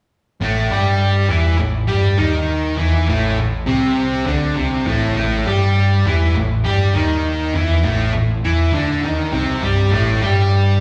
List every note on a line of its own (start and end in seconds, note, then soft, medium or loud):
0.40 0.68 A1 medium
0.40 0.70 A2 medium
0.40 0.70 A3 medium
0.70 1.26 G2 medium
0.70 1.29 G3 medium
0.70 1.30 G4 medium
1.29 1.57 E2 medium
1.29 1.58 E3 medium
1.29 1.59 E4 medium
1.59 1.87 A1 medium
1.59 1.83 A2 medium
1.87 2.17 G2 medium
1.87 2.17 G3 medium
1.87 2.18 G4 medium
2.18 2.75 D#2 medium
2.18 2.77 D#3 medium
2.18 2.77 D#4 loud
2.78 3.06 E2 medium
2.78 3.07 E3 medium
2.78 3.07 E4 loud
3.08 3.36 A1 medium
3.08 3.37 A2 medium
3.08 3.38 A3 medium
3.38 3.65 A1 medium
3.38 3.62 A2 medium
3.66 4.23 C2 medium
3.66 4.25 C3 medium
3.66 4.26 C4 loud
4.26 4.55 D2 medium
4.26 4.55 D3 medium
4.26 4.56 D4 loud
4.55 4.85 C2 medium
4.55 4.85 C3 medium
4.55 4.86 C4 loud
4.86 5.14 A1 medium
4.86 5.15 A2 medium
4.86 5.16 A3 medium
5.16 5.44 A1 medium
5.16 5.45 A2 medium
5.16 5.45 A3 loud
5.46 6.01 G2 medium
5.46 6.05 G3 medium
5.46 6.05 G4 loud
6.06 6.33 E2 medium
6.06 6.35 E3 medium
6.06 6.35 E4 medium
6.36 6.63 A1 medium
6.36 6.60 A2 medium
6.65 6.93 G2 medium
6.65 6.94 G3 medium
6.65 6.94 G4 loud
6.95 7.50 D#2 medium
6.95 7.53 D#3 medium
6.95 7.54 D#4 loud
7.54 7.82 E2 medium
7.54 7.83 E3 medium
7.54 7.84 E4 loud
7.84 8.12 A1 medium
7.84 8.12 A2 medium
7.84 8.14 A3 medium
8.13 8.42 A1 medium
8.13 8.38 A2 medium
8.43 8.71 E2 medium
8.43 8.73 E3 medium
8.43 8.73 E4 loud
8.72 9.00 D2 medium
8.72 9.02 D3 medium
8.72 9.03 D4 medium
9.02 9.30 D#2 medium
9.02 9.32 D#3 medium
9.02 9.33 D#4 medium
9.33 9.60 C2 medium
9.33 9.62 C3 medium
9.33 9.62 C4 medium
9.61 9.90 G2 medium
9.61 9.92 G3 medium
9.61 9.92 G4 medium
9.91 10.19 A1 medium
9.91 10.21 A2 medium
9.91 10.21 A3 loud
10.21 10.78 G2 medium
10.21 10.80 G3 medium
10.21 10.80 G4 loud